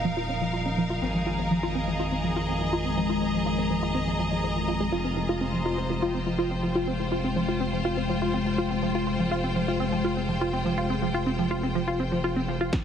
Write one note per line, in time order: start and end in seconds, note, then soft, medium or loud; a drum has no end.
0.00 1.00 D#1 medium
0.00 12.72 F2 medium
0.00 0.98 A#3 medium
0.00 0.98 D#4 medium
0.00 2.35 D#4 medium
0.00 0.98 G4 medium
0.00 2.58 A#4 medium
0.00 2.58 F5 medium
0.04 0.12 F3 medium
0.17 0.28 F4 loud
0.29 0.33 C#4 medium
0.41 0.49 F3 medium
0.53 0.65 F4 loud
0.66 0.70 C#4 medium
0.78 0.85 F3 medium
0.90 1.01 F4 loud
1.02 4.90 G#1 medium
1.02 4.88 G#3 medium
1.02 1.07 C4 medium
1.02 4.88 D#4 medium
1.02 5.78 G#4 medium
1.02 4.88 A#4 medium
1.02 4.88 C5 medium
1.14 1.22 F3 medium
1.26 1.38 F4 loud
1.35 1.43 C4 medium
1.35 6.53 A#5 medium
1.51 1.58 F3 medium
1.63 1.74 F4 loud
1.63 6.56 D#5 medium
1.75 1.80 C4 medium
1.88 1.95 F3 medium
2.00 2.11 F4 loud
2.12 2.16 C4 medium
2.24 2.32 F3 medium
2.36 2.48 F4 loud
2.48 2.53 C4 medium
2.61 2.68 F3 medium
2.73 2.84 F4 loud
2.85 2.90 C4 medium
2.97 3.05 F3 medium
3.10 3.21 F4 medium
3.22 3.26 C4 medium
3.34 3.41 F3 medium
3.46 3.57 F4 loud
3.58 3.63 C4 medium
3.70 3.78 F3 medium
3.83 3.94 F4 loud
3.95 3.99 C4 medium
4.07 4.15 F3 medium
4.19 4.24 F3 medium
4.32 4.39 F3 medium
4.43 4.51 F3 medium
4.56 4.63 F3 medium
4.68 4.72 F4 medium
4.80 4.88 G#3 loud
4.92 12.70 F1 medium
4.92 12.69 G#3 medium
4.92 12.69 F4 medium
4.92 5.04 F4 loud
4.92 12.85 F4 medium
4.92 8.79 G5 medium
5.05 5.09 C4 medium
5.17 5.24 F3 medium
5.29 5.40 F4 loud
5.41 5.46 C4 medium
5.46 12.85 C5 medium
5.53 5.61 F3 medium
5.65 5.77 F4 loud
5.78 5.82 C4 medium
5.90 5.98 F3 medium
6.02 6.13 F4 loud
6.02 12.85 G5 medium
6.14 6.19 C4 medium
6.27 6.34 F3 medium
6.39 6.50 F4 loud
6.51 6.55 C4 medium
6.63 6.71 F3 medium
6.75 6.87 F4 medium
6.87 6.92 C4 medium
7.00 7.07 F3 medium
7.12 7.23 F4 loud
7.24 7.29 C4 medium
7.36 7.44 F3 medium
7.48 7.60 F4 loud
7.60 7.65 C4 medium
7.73 7.80 F3 medium
7.85 7.96 F4 loud
7.97 8.02 C4 medium
8.09 8.17 F3 medium
8.22 8.33 F4 loud
8.34 8.38 C4 medium
8.46 8.54 F3 medium
8.58 8.70 F4 loud
8.71 8.75 C4 medium
8.83 8.90 F3 medium
8.83 12.69 G#4 medium
8.95 9.06 F4 loud
9.07 9.12 C4 medium
9.19 9.27 F3 medium
9.31 9.43 F4 loud
9.44 9.48 C4 medium
9.56 9.63 F3 medium
9.68 9.79 F4 loud
9.80 9.85 C4 medium
9.92 10.00 F3 medium
10.04 10.16 F4 loud
10.17 10.21 C4 medium
10.29 10.37 F3 medium
10.41 10.52 F4 loud
10.53 10.58 C4 medium
10.66 10.73 F3 medium
10.78 10.89 F4 loud
10.90 10.94 C4 medium
11.02 11.10 F3 medium
11.14 11.26 F4 loud
11.26 11.31 C4 medium
11.39 11.46 F3 medium
11.51 11.62 F4 loud
11.63 11.68 C4 medium
11.75 11.83 F3 medium
11.88 11.99 F4 loud
12.00 12.04 C4 medium
12.12 12.19 F3 medium
12.24 12.35 F4 loud
12.36 12.41 C4 medium
12.48 12.56 F3 medium
12.61 12.72 F4 loud
12.73 12.80 F3 medium
12.73 12.85 D#4 medium
12.73 kick loud
12.73 snare soft
12.73 closed hi-hat soft